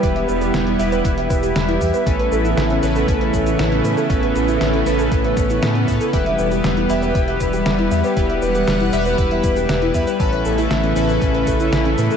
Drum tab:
HH |xx-xxxoxxxxxxxox|xx-xxxoxxxxxxxox|xxxxxxoxxxxxxxox|xx-xxxoxxxxxxxox|
SH |x-xxx-xxx-xxx-xx|x-xxx-xxx-xxx-xx|x-xxx-xxx-xxx-xx|x-xxx-xxx-xxx-xx|
SD |----o-------o---|----o-------o---|----o-------o---|----o-------o---|
BD |o-------o-o---o-|o-------o-o-----|o-------o-o---o-|o-------o-o-----|

HH |xx-xxxoxxxxxxxox|xx-xxxoxxxxxxxox|
SH |x-xxx-xxx-xxx-xx|x-xxx-xxx-xxx-xx|
SD |----o-------o---|----o-------o---|
BD |o-------o-o---o-|o-------o-o-----|